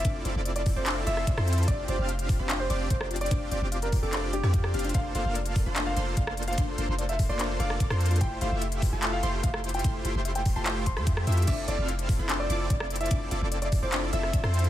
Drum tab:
CC |--------------------------------|--------------------------------|--------------------------------|--------------------------------|
HH |x---x---x-x-o---x---x---x---xxxx|x---x---x-x-o---x---x---x---xxxx|x---x---x-x-o---x---x---x---xxxx|x---x---x-x-o---x---x---x---xxxx|
CP |----------------x---------------|----------------x---------------|----------------x---------------|----------------x---------------|
SD |----------------------r---r-----|--------------------------r-----|----------------------r---r-----|--------------------------r-----|
BD |o-----------o-----------o-------|o-----------o-----------o-------|o-----------o-----------o-------|o-----------o-----------o-------|

CC |--------------------------------|--------------------------------|--------------------------------|x-------------------------------|
HH |x---x---x-x-o---x---x---x---xxxx|x---x---x-x-o---x---x---x---xxxx|x---x---x-x-o---x---x---x---xxxx|x---x---x-x-o---x---x---x---xxxx|
CP |----------------x---------------|----------------x---------------|----------------x---------------|----------------x---------------|
SD |----------------------r---r-----|--------------------------r-----|----------------------r---r-----|--------------------------r-----|
BD |o-----------o-----------o-------|o-----------o-----------o-------|o-----------o-------o---o-------|o-----------o-----------o-------|

CC |--------------------------------|
HH |x---x---x-x-o---x---x---x---xxx-|
CP |----------------x---------------|
SD |----------------------r---r-----|
BD |o-----------o-----------o-------|